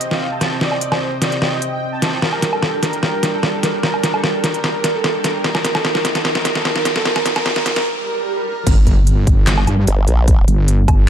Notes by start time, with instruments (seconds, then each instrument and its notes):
Already playing: supersaw synth C3 C4 D#5 G5
0.01 closed hi-hat
0.11 supersaw synth F5, snare
0.31 supersaw synth A5
0.41 snare, closed hi-hat
0.61 supersaw synth D5, snare
0.72 low woodblock
0.81 closed hi-hat
0.92 supersaw synth C5, snare, low woodblock
1.22 supersaw synth D5, snare, closed hi-hat
1.32 closed hi-hat
1.42 supersaw synth D#5, snare
1.62 closed hi-hat
1.72 supersaw synth G5
1.92 supersaw synth A5
2.02 snare, closed hi-hat
2.22 supersaw synth G3 D4 A#4, snare, riser
2.33 low woodblock
2.42 snare, closed hi-hat
2.53 supersaw synth A4, low woodblock
2.63 snare
2.83 supersaw synth A#4, snare, closed hi-hat
2.93 closed hi-hat
3.03 supersaw synth A#4, snare
3.23 snare, closed hi-hat
3.33 supersaw synth A4
3.43 snare
3.63 supersaw synth A#4, snare, closed hi-hat
3.83 supersaw synth A#4, snare
3.94 low woodblock
4.04 snare, closed hi-hat
4.14 supersaw synth A4, low woodblock
4.24 snare
4.44 supersaw synth A#4, snare, closed hi-hat
4.54 closed hi-hat
4.64 supersaw synth A#4, snare
4.84 snare, closed hi-hat
4.95 supersaw synth A4
5.04 snare
5.24 supersaw synth A#4, snare, closed hi-hat
5.44 supersaw synth D#3 D#4 A#4, snare
5.55 snare, low woodblock
5.65 snare, closed hi-hat
5.75 supersaw synth A4, snare, low woodblock
5.85 supersaw synth A#4, snare
5.95 snare
6.05 snare, closed hi-hat
6.15 supersaw synth A4, snare, closed hi-hat
6.25 supersaw synth A#4, snare
6.35 snare
6.45 snare, closed hi-hat
6.56 supersaw synth A4, snare
6.65 supersaw synth A#4, snare
6.76 snare
6.85 snare, closed hi-hat
6.96 supersaw synth A4, snare
7.05 supersaw synth A#4, snare
7.16 snare, low woodblock
7.26 supersaw synth A#4, snare, closed hi-hat
7.36 snare, low woodblock
7.46 supersaw synth A#4, snare
7.56 snare
7.66 supersaw synth A#4, snare, closed hi-hat
7.76 snare, closed hi-hat
7.86 supersaw synth A#4, swell
8.06 supersaw synth A#4
8.26 supersaw synth A#4
8.46 supersaw synth A#4
8.67 wobble bass G1, kick, closed hi-hat, crash, impact
8.87 kick, closed hi-hat
9.07 closed hi-hat
9.27 wobble bass G1, kick, closed hi-hat
9.47 snare, clap, closed hi-hat
9.58 low woodblock
9.67 wobble bass G2, closed hi-hat, low woodblock
9.87 wobble bass G1, closed hi-hat
10.08 wobble bass A#1, closed hi-hat
10.28 kick, closed hi-hat
10.48 wobble bass G1, closed hi-hat
10.68 closed hi-hat
10.88 wobble bass G1, kick, closed hi-hat, low woodblock